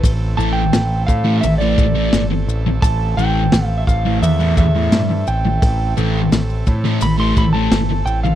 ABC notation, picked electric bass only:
X:1
M:4/4
L:1/8
Q:1/4=86
K:Am
V:1 name="Picked electric bass" clef=bass
A,,, A,,, A,,, A,, A,,, A,,, G,,, A,,, | A,,, A,,, A,,, A,,, E,, E,, G,, A,,, | A,,, A,,, A,,, A,, A,,, A,,, G,,, A,,, |]